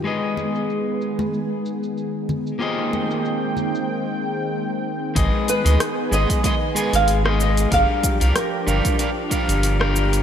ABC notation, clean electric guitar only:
X:1
M:4/4
L:1/16
Q:"Swing 16ths" 1/4=94
K:Ablyd
V:1 name="Clean electric guitar"
[A,A_ce]16 | [B,FGAce]8 z8 | [A,A_ce]3 [A,Ace] z2 [A,Ace]2 [A,Ace] z [A,Aca]3 [A,Ace]3 | [G,DBf]3 [G,DBf] z2 [G,DBf]2 [G,DBf] z [G,DBf]3 [G,DBf]3 |]